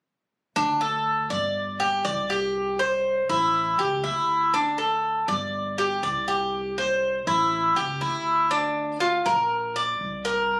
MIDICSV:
0, 0, Header, 1, 3, 480
1, 0, Start_track
1, 0, Tempo, 497100
1, 544, Time_signature, 4, 2, 24, 8
1, 10234, End_track
2, 0, Start_track
2, 0, Title_t, "Cuban tres"
2, 0, Program_c, 0, 25
2, 541, Note_on_c, 0, 62, 66
2, 775, Note_off_c, 0, 62, 0
2, 780, Note_on_c, 0, 69, 57
2, 1248, Note_off_c, 0, 69, 0
2, 1257, Note_on_c, 0, 74, 65
2, 1726, Note_off_c, 0, 74, 0
2, 1736, Note_on_c, 0, 67, 63
2, 1973, Note_off_c, 0, 67, 0
2, 1976, Note_on_c, 0, 74, 63
2, 2213, Note_off_c, 0, 74, 0
2, 2219, Note_on_c, 0, 67, 51
2, 2687, Note_off_c, 0, 67, 0
2, 2697, Note_on_c, 0, 72, 61
2, 3166, Note_off_c, 0, 72, 0
2, 3181, Note_on_c, 0, 64, 68
2, 3648, Note_off_c, 0, 64, 0
2, 3657, Note_on_c, 0, 67, 62
2, 3893, Note_off_c, 0, 67, 0
2, 3897, Note_on_c, 0, 64, 54
2, 4366, Note_off_c, 0, 64, 0
2, 4382, Note_on_c, 0, 62, 71
2, 4615, Note_on_c, 0, 69, 61
2, 4616, Note_off_c, 0, 62, 0
2, 5085, Note_off_c, 0, 69, 0
2, 5100, Note_on_c, 0, 74, 59
2, 5568, Note_off_c, 0, 74, 0
2, 5583, Note_on_c, 0, 67, 68
2, 5816, Note_off_c, 0, 67, 0
2, 5823, Note_on_c, 0, 74, 56
2, 6057, Note_off_c, 0, 74, 0
2, 6062, Note_on_c, 0, 67, 57
2, 6529, Note_off_c, 0, 67, 0
2, 6546, Note_on_c, 0, 72, 59
2, 7011, Note_off_c, 0, 72, 0
2, 7021, Note_on_c, 0, 64, 61
2, 7488, Note_off_c, 0, 64, 0
2, 7496, Note_on_c, 0, 67, 68
2, 7733, Note_off_c, 0, 67, 0
2, 7735, Note_on_c, 0, 64, 61
2, 8205, Note_off_c, 0, 64, 0
2, 8215, Note_on_c, 0, 62, 68
2, 8685, Note_off_c, 0, 62, 0
2, 8694, Note_on_c, 0, 65, 67
2, 8932, Note_off_c, 0, 65, 0
2, 8938, Note_on_c, 0, 70, 74
2, 9406, Note_off_c, 0, 70, 0
2, 9423, Note_on_c, 0, 74, 72
2, 9888, Note_off_c, 0, 74, 0
2, 9896, Note_on_c, 0, 70, 67
2, 10234, Note_off_c, 0, 70, 0
2, 10234, End_track
3, 0, Start_track
3, 0, Title_t, "Upright bass"
3, 0, Program_c, 1, 32
3, 545, Note_on_c, 1, 38, 87
3, 1226, Note_off_c, 1, 38, 0
3, 1256, Note_on_c, 1, 31, 78
3, 1941, Note_off_c, 1, 31, 0
3, 1978, Note_on_c, 1, 36, 75
3, 3118, Note_off_c, 1, 36, 0
3, 3180, Note_on_c, 1, 33, 84
3, 3628, Note_off_c, 1, 33, 0
3, 3664, Note_on_c, 1, 37, 56
3, 3887, Note_off_c, 1, 37, 0
3, 3900, Note_on_c, 1, 38, 72
3, 5040, Note_off_c, 1, 38, 0
3, 5099, Note_on_c, 1, 31, 81
3, 5783, Note_off_c, 1, 31, 0
3, 5818, Note_on_c, 1, 36, 83
3, 6959, Note_off_c, 1, 36, 0
3, 7021, Note_on_c, 1, 33, 92
3, 7469, Note_off_c, 1, 33, 0
3, 7503, Note_on_c, 1, 37, 65
3, 7727, Note_off_c, 1, 37, 0
3, 7741, Note_on_c, 1, 38, 79
3, 8879, Note_off_c, 1, 38, 0
3, 8941, Note_on_c, 1, 34, 93
3, 9623, Note_off_c, 1, 34, 0
3, 9663, Note_on_c, 1, 36, 76
3, 10234, Note_off_c, 1, 36, 0
3, 10234, End_track
0, 0, End_of_file